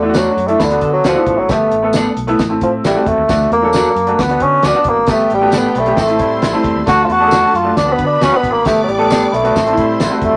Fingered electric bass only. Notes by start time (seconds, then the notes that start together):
Already playing: E2
0.37 F#2
0.60 D2
0.82 D3
1.04 D2
1.27 A1
1.38 G#1
1.49 G1
1.72 A1
2.16 B1
2.39 A1
2.61 A2
2.85 A1
3.06 E2
3.18 D#2
3.29 D2
3.51 E2
3.96 F#2
4.19 D2
4.41 D3
4.64 D2
4.85 A1
4.97 G#1
5.08 G1
5.31 A1
5.75 B1
5.98 A1
6.20 A2
6.43 A1
6.64 E2
6.76 D#2
6.87 D2
7.09 E2
7.54 F#2
7.77 D2
7.99 D3
8.21 D2
8.43 A1
8.54 G#1
8.66 G1
8.88 A1
9.33 B1
9.56 A1
9.77 A2
10.00 A1
10.21 E2
10.33 D#2